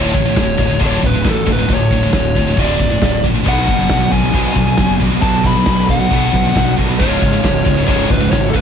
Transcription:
Already playing: fingered electric bass D1, distorted electric guitar D2 A2 D3, lead electric guitar C#5
0.14 fingered electric bass A1, distorted electric guitar D2 A2, kick
0.26 distorted electric guitar D2 A2
0.36 fingered electric bass D1, distorted electric guitar D2 A2, kick, snare, china
0.57 fingered electric bass D1, distorted electric guitar D2 A2, kick
0.69 distorted electric guitar D2 A2
0.79 fingered electric bass D1, distorted electric guitar D2 A2 D3, kick, china
0.86 lead electric guitar C#5
1.02 fingered electric bass D1, distorted electric guitar D2 A2, kick
1.07 lead electric guitar B4
1.14 distorted electric guitar D2 A2
1.24 fingered electric bass A1, distorted electric guitar D2 A2, kick, snare, china
1.30 lead electric guitar A4
1.47 fingered electric bass D1, distorted electric guitar D2 A2, kick
1.52 lead electric guitar B4
1.59 distorted electric guitar D2 A2
1.67 fingered electric bass D1, distorted electric guitar D2 A2, kick, china
1.74 lead electric guitar C#5
1.91 distorted electric guitar D2 A2, kick
2.03 distorted electric guitar D2 A2
2.12 fingered electric bass D1, distorted electric guitar D2 A2, kick, snare, china
2.35 distorted electric guitar D2 A2, kick
2.47 distorted electric guitar D2 A2
2.57 fingered electric bass D1, distorted electric guitar D2 A2 D3, kick, china
2.61 lead electric guitar D5
2.79 fingered electric bass D1, distorted electric guitar D2 A2, kick
2.90 distorted electric guitar D2 A2
3.01 fingered electric bass D1, distorted electric guitar D2 A2, kick, snare, china
3.24 fingered electric bass A#1, distorted electric guitar D2 A2, kick
3.34 distorted electric guitar D2 A2
3.43 fingered electric bass B1, distorted electric guitar B2 F#3 B3 F#4, kick, china, crash
3.47 distorted electric guitar D4 B4, lead electric guitar F#5
3.68 fingered electric bass F#1, distorted electric guitar B2 F#3, kick
3.80 distorted electric guitar B2 F#3
3.89 fingered electric bass B1, distorted electric guitar B2 F#3, kick, snare, china
4.12 fingered electric bass B1, distorted electric guitar B2 F#3, lead electric guitar G#5, kick
4.23 distorted electric guitar B2 F#3
4.33 fingered electric bass B1, distorted electric guitar B2 F#3 B3, kick, china
4.56 fingered electric bass B1, distorted electric guitar B2 F#3, kick
4.67 distorted electric guitar B2 F#3
4.77 fingered electric bass F#1, distorted electric guitar B2 F#3, kick, snare, china
4.99 fingered electric bass B1, distorted electric guitar B2 F#3 B3 D4 F#4 B4, kick
5.11 distorted electric guitar B2 F#3
5.20 fingered electric bass B1, distorted electric guitar B2 F#3 B3 D4 F#4 B4, lead electric guitar A5, kick, china
5.44 distorted electric guitar B2 F#3, lead electric guitar B5, kick
5.56 distorted electric guitar B2 F#3
5.65 fingered electric bass B1, distorted electric guitar B2 F#3, kick, snare, china
5.89 distorted electric guitar B2 F#3, lead electric guitar F#5, kick
6.00 distorted electric guitar B2 F#3
6.10 fingered electric bass B1, distorted electric guitar B2 F#3 B3, kick, china
6.33 fingered electric bass B1, distorted electric guitar B2 F#3, kick
6.46 distorted electric guitar B2 F#3
6.55 fingered electric bass B1, distorted electric guitar B2 F#3, kick, snare, china
6.77 fingered electric bass B1, distorted electric guitar B2 F#3 B3 D4 F#4 B4, kick
6.91 distorted electric guitar B2 F#3
6.99 fingered electric bass C#1, distorted electric guitar C#2 G#2 C#3 G#3 F4, lead electric guitar C#5, kick, china, crash
7.22 fingered electric bass G#1, distorted electric guitar C#2 G#2, kick
7.33 distorted electric guitar C#2 G#2
7.43 fingered electric bass C#1, distorted electric guitar C#2 G#2, kick, snare, china
7.65 fingered electric bass C#1, distorted electric guitar C#2 G#2, kick
7.78 distorted electric guitar C#2 G#2
7.86 fingered electric bass C#1, distorted electric guitar C#2 G#2 C#3, lead electric guitar C#5, kick, china
8.09 fingered electric bass C#1, distorted electric guitar C#2 G#2, lead electric guitar B4, kick
8.20 distorted electric guitar C#2 G#2
8.31 fingered electric bass G#1, distorted electric guitar C#2 G#2, lead electric guitar C#5, kick, snare, china
8.49 distorted electric guitar C#2 F4, lead electric guitar A4
8.53 fingered electric bass C#1, distorted electric guitar C#2 G#2 C#3 G#3, lead electric guitar B4, kick

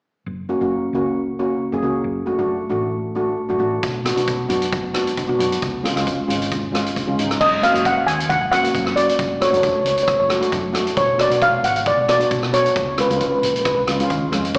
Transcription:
0.26 fingered electric bass F#1
0.49 steel pan A#3 C#4 F#4
0.61 fingered electric bass F#1, steel pan A#3 C#4 F#4
0.93 fingered electric bass C#2, steel pan A#3 C#4 F#4
1.39 steel pan A#3 C#4 F#4
1.72 fingered electric bass F#1, steel pan A#3 C#4 G#4
1.82 fingered electric bass C#2, steel pan A#3 C#4 F#4
2.04 fingered electric bass F#1
2.26 steel pan A3 D4 F#4
2.39 fingered electric bass F#1, steel pan A3 D4 F#4
2.69 fingered electric bass A1, steel pan A3 D4 F#4
3.15 steel pan A3 D4 F#4
3.49 fingered electric bass F#1, steel pan A3 D4 F#4
3.59 fingered electric bass A1, steel pan A3 D4 F#4
3.83 fingered electric bass B1, kick, closed hi-hat
4.05 steel pan B3 D4 F#4, cross-stick, closed hi-hat
4.16 fingered electric bass B1, steel pan B3 D4 F#4, closed hi-hat
4.27 kick, closed hi-hat
4.48 fingered electric bass F#2, steel pan B3 D4 F#4, closed hi-hat
4.62 closed hi-hat
4.72 kick, closed hi-hat
4.94 steel pan B3 D4 F#4, cross-stick, closed hi-hat
5.07 closed hi-hat
5.17 kick, closed hi-hat
5.28 fingered electric bass B1, steel pan B3 D4 F#4
5.39 fingered electric bass F#2, steel pan B3 D4 F#4, closed hi-hat
5.52 closed hi-hat
5.62 fingered electric bass C#2, kick, closed hi-hat
5.83 steel pan G#3 C#4 F4, cross-stick, closed hi-hat
5.95 fingered electric bass C#2, steel pan G#3 C#4 F4, cross-stick, closed hi-hat
6.07 kick, closed hi-hat
6.28 fingered electric bass G#1, steel pan G#3 C#4 F4, closed hi-hat
6.42 closed hi-hat
6.52 kick, closed hi-hat
6.72 steel pan G#3 C#4 F4, cross-stick, closed hi-hat
6.86 closed hi-hat
6.96 kick, closed hi-hat
7.07 fingered electric bass C#2, steel pan G#3 C#4 F4
7.18 fingered electric bass G#1, steel pan G#3 C#4 D#4, closed hi-hat
7.31 cross-stick, closed hi-hat
7.41 fingered electric bass F#1, steel pan D#5, kick, crash
7.62 steel pan A#3 C#4 F#4 F5, cross-stick, closed hi-hat
7.73 fingered electric bass F#1, steel pan A#3 C#4 F#4, closed hi-hat
7.85 steel pan F#5, kick, closed hi-hat
8.07 fingered electric bass D#2, steel pan G#5, closed hi-hat
8.20 closed hi-hat
8.29 steel pan F#5, kick, closed hi-hat
8.41 fingered electric bass F#1
8.52 steel pan A#3 C#4 F#4 F#5, cross-stick, closed hi-hat
8.63 steel pan A#3 C#4 F#4, closed hi-hat
8.74 fingered electric bass F#2, kick, closed hi-hat
8.87 cross-stick
8.96 steel pan A#3 C#4 F#4 D5, closed hi-hat
9.09 closed hi-hat
9.19 fingered electric bass F#1, kick, closed hi-hat
9.40 steel pan A3 D4 F#4 C#5, cross-stick, closed hi-hat
9.51 fingered electric bass F#1, steel pan A3 D4 F#4 C#5, closed hi-hat
9.57 steel pan C#5
9.63 steel pan C#5, kick, closed hi-hat
9.73 steel pan C#5
9.79 steel pan C#5
9.84 fingered electric bass C#2, steel pan C#5, closed hi-hat
9.96 steel pan C#5, closed hi-hat
10.03 steel pan C#5
10.08 steel pan C#5, kick, cross-stick, closed hi-hat
10.20 fingered electric bass F#1, steel pan C#5
10.28 steel pan A3 D4 F#4, cross-stick, closed hi-hat
10.40 steel pan A3 D4 F#4, closed hi-hat
10.52 fingered electric bass F#2, kick, closed hi-hat
10.73 steel pan A3 D4 F#4, cross-stick, closed hi-hat
10.87 closed hi-hat
10.97 fingered electric bass B1, steel pan C#5, kick, closed hi-hat
11.18 steel pan B3 D4 F#4 D5, cross-stick, closed hi-hat
11.30 fingered electric bass B1, steel pan B3 D4 F#4, closed hi-hat
11.42 steel pan F5, kick, closed hi-hat
11.63 fingered electric bass G#1, steel pan F#5, closed hi-hat
11.76 closed hi-hat
11.86 steel pan D5, kick, closed hi-hat
11.97 fingered electric bass B1
12.08 steel pan B3 D4 F#4 D5, cross-stick, closed hi-hat
12.19 steel pan B3 D4 F#4, closed hi-hat
12.31 fingered electric bass B2, kick, closed hi-hat
12.43 cross-stick
12.52 steel pan B3 D4 F#4 C#5, closed hi-hat
12.66 closed hi-hat
12.75 fingered electric bass C#2, kick, closed hi-hat
12.97 steel pan G#3 C#4 F4 B4, cross-stick, closed hi-hat
13.08 fingered electric bass C#2, steel pan G#3 C#4 F4 B4, closed hi-hat
13.17 steel pan B4
13.21 steel pan B4, kick, closed hi-hat
13.31 steel pan B4
13.39 fingered electric bass A#1, steel pan B4
13.43 steel pan B4, closed hi-hat
13.53 steel pan B4, closed hi-hat
13.61 steel pan B4
13.65 steel pan B4, kick, cross-stick, closed hi-hat
13.75 fingered electric bass C#2, steel pan B4
13.87 fingered electric bass C#2, steel pan G#3 C#4 F4, cross-stick, closed hi-hat
14.00 steel pan G#3 C#4 F4, closed hi-hat
14.10 fingered electric bass D#2, kick, closed hi-hat
14.32 fingered electric bass F2, steel pan G#3 C#4 F4, cross-stick, closed hi-hat
14.45 closed hi-hat
14.54 fingered electric bass F#2, kick, closed hi-hat

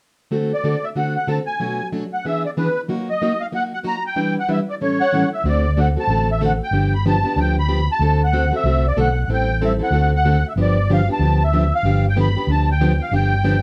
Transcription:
0.31 steel-string acoustic guitar D3 A3 C4 F#4 A4
0.53 accordion D5
0.64 steel-string acoustic guitar D3 A3 C4 F#4 A4
0.84 accordion E5
0.96 steel-string acoustic guitar D3 A3 C4 F#4 A4, accordion F#5
1.16 accordion F#5
1.27 steel-string acoustic guitar D3 A3 C4 F#4 A4, accordion A5
1.46 accordion G#5
1.60 steel-string acoustic guitar B2 F#3 A3 D4 F#4
1.92 steel-string acoustic guitar B2 F#3 A3 D4 F#4
2.13 accordion F#5
2.25 steel-string acoustic guitar E3 B3 D4 G#4, accordion E5
2.45 accordion D5
2.57 steel-string acoustic guitar E3 B3 D4 G#4, accordion B4
2.88 steel-string acoustic guitar F#3 A#3 D#4 F#4
3.10 accordion D#5
3.22 steel-string acoustic guitar F#3 A#3 D#4 F#4
3.41 accordion F5
3.52 steel-string acoustic guitar F#3 A#3 D#4 F#4, accordion F#5
3.74 accordion F#5
3.83 steel-string acoustic guitar F#3 A#3 D#4 F#4
3.87 accordion A#5
4.07 accordion G5
4.16 steel-string acoustic guitar E3 G3 D4 E4 B4
4.40 accordion F#5
4.48 steel-string acoustic guitar E3 G3 D4 E4 B4, accordion E5
4.70 accordion D5
4.81 steel-string acoustic guitar A2 E3 G3 C#4 E4 A4, accordion C#5
5.01 accordion F#5
5.12 steel-string acoustic guitar A2 E3 G3 C#4 E4 A4
5.33 accordion E5
5.44 fingered electric bass D2, steel-string acoustic guitar D3 A3 C4 F#4 A4
5.48 accordion D5
5.77 steel-string acoustic guitar D3 A3 C4 F#4 A4, accordion F#5
5.96 steel-string acoustic guitar C4 F#4 A4, accordion A5
6.07 fingered electric bass A1, steel-string acoustic guitar D3 A3 C4 F#4 A4
6.32 accordion E5
6.41 steel-string acoustic guitar D3 A3 C4 F#4 A4, accordion F#5
6.63 accordion G5
6.71 fingered electric bass G1, steel-string acoustic guitar D3 F3 B3 D4 G4
6.94 accordion B5
7.06 steel-string acoustic guitar D3 F3 B3 D4 G4, accordion A5
7.24 steel-string acoustic guitar B3 D4 G4
7.36 fingered electric bass D2, steel-string acoustic guitar D3 F3 B3 D4 G4, accordion G5
7.59 accordion B5
7.68 steel-string acoustic guitar D3 F3 B3 D4 G4
7.92 accordion A5
7.99 fingered electric bass D2, steel-string acoustic guitar D3 A3 C4 F#4 A4
8.24 accordion F#5
8.33 steel-string acoustic guitar D3 A3 C4 F#4 A4
8.52 steel-string acoustic guitar C4 F#4 A4
8.56 accordion E5
8.64 fingered electric bass C2, steel-string acoustic guitar D3 A3 C4 F#4 A4
8.87 accordion D5
8.96 fingered electric bass B1, steel-string acoustic guitar D3 A3 C4 F#4 A4, accordion F#5
9.24 fingered electric bass A1, accordion F#5
9.29 steel-string acoustic guitar E3 G3 C4 E4 A4
9.34 accordion G5
9.61 steel-string acoustic guitar E3 G3 C4 E4 A4
9.65 accordion E5
9.79 steel-string acoustic guitar C4 E4 A4, accordion F#5
9.91 fingered electric bass D2, steel-string acoustic guitar D3 A3 C4 F#4 A4
10.16 accordion F#5
10.25 steel-string acoustic guitar D3 A3 C4 F#4 A4
10.48 accordion E5
10.56 fingered electric bass G1, steel-string acoustic guitar D3 F3 B3 D4 G4
10.62 accordion D5
10.90 steel-string acoustic guitar D3 F3 B3 D4 G4, accordion F5
11.09 steel-string acoustic guitar B3 D4 G4
11.13 accordion A5
11.19 fingered electric bass D2, steel-string acoustic guitar D3 F3 B3 D4 G4
11.44 accordion E5
11.53 steel-string acoustic guitar D3 F3 B3 D4 G4
11.75 accordion F5
11.83 fingered electric bass G1, steel-string acoustic guitar D3 F3 B3 D4 G4
12.09 accordion G5
12.16 steel-string acoustic guitar D3 F3 B3 D4 G4, accordion B5
12.36 steel-string acoustic guitar B3 D4 G4
12.47 fingered electric bass D2, steel-string acoustic guitar D3 F3 B3 D4 G4
12.51 accordion A5
12.71 accordion G5
12.81 steel-string acoustic guitar D3 F3 B3 D4 G4
13.02 accordion F5
13.11 fingered electric bass G1, steel-string acoustic guitar D3 F3 B3 D4 G4, accordion G5
13.44 steel-string acoustic guitar D3 F3 B3 D4 G4

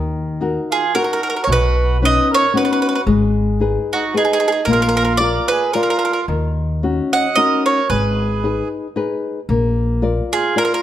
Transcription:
Already playing: upright bass D#2, nylon-string guitar D#3
0.41 nylon-string guitar D#4 F#4 A#4
0.71 accordion F4, mandolin G#4
0.95 nylon-string guitar D#4 F#4 A#4, accordion F#4, mandolin A#4
1.04 mandolin A#4
1.13 mandolin A#4
1.23 mandolin A#4
1.30 mandolin A#4
1.36 mandolin A#4
1.42 accordion A#4, mandolin C#5
1.47 upright bass B1, nylon-string guitar B2, accordion F#4
1.52 mandolin B4
2.02 nylon-string guitar B3 C#4 D#4, accordion B4, mandolin D#5
2.31 accordion A#4, mandolin C#5
2.54 nylon-string guitar B3 C#4 D#4, accordion F#4, mandolin B4
2.65 mandolin B4
2.73 mandolin B4
2.82 mandolin B4
2.89 mandolin B4
2.95 mandolin B4
3.07 upright bass G#1, nylon-string guitar G#3
3.60 nylon-string guitar D#4 G#4 B4
3.93 accordion D#4, mandolin F#4
4.14 nylon-string guitar D#4 G#4 B4, accordion D#4, mandolin G#4
4.25 mandolin G#4
4.33 mandolin G#4
4.40 mandolin G#4
4.48 mandolin G#4
4.52 mandolin G#4
4.65 upright bass A#1, nylon-string guitar A#3, mandolin A#4
4.70 accordion F4, mandolin A#4
4.82 mandolin A#4
4.89 mandolin A#4
4.97 mandolin A#4
5.05 mandolin A#4
5.17 nylon-string guitar F4 A#4 D5, mandolin D5
5.23 accordion A#4
5.48 accordion G#4, mandolin B4
5.73 nylon-string guitar F4 A#4 D5, accordion F4, mandolin A#4
5.83 mandolin A#4
5.90 mandolin A#4
5.99 mandolin A#4
6.05 mandolin A#4
6.13 mandolin A#4
6.28 upright bass D#2, nylon-string guitar D#3
6.83 nylon-string guitar C#4 D#4 F#4
7.13 accordion D#5, mandolin F#5
7.36 nylon-string guitar C#4 D#4 F#4, accordion A#4, mandolin D#5
7.65 accordion A#4, mandolin C#5
7.90 upright bass G#1, nylon-string guitar G#3, accordion G#4, mandolin B4
8.44 nylon-string guitar D#4 G#4 B4
8.96 nylon-string guitar D#4 G#4 B4
9.49 upright bass A#1, nylon-string guitar A#3
10.02 nylon-string guitar F4 A#4 D5
10.33 accordion F4, mandolin G#4
10.56 nylon-string guitar F4 A#4 D5, accordion F4, mandolin A#4
10.65 mandolin A#4
10.74 mandolin A#4

